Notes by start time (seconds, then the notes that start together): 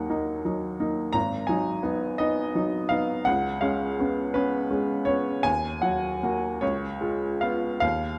Already playing: D#2 F#3 A#3 D#4 F#5
0.10 A#3 D#4
0.45 F#3 D#4
0.80 A#3 D#4
1.13 G#1 A#5
1.47 F#3 D#4 G#5
1.83 B3 D#4
2.18 B3 D#4 D#5
2.55 F#3 D#4
2.89 B3 D#4 F5
3.25 C#2 F#5
3.61 G#3 C#4 F5
3.99 B3 C#4
4.34 B3 C#4 B4
4.71 G#3 C#4
5.05 B3 C#4 C#5
5.43 D#2 G#5
5.82 F#3 F#4 F#5
6.23 A#3 F#4
6.61 C#2 C#5
7.01 G#3 F4
7.41 B3 F4 F5
7.80 D#2 F5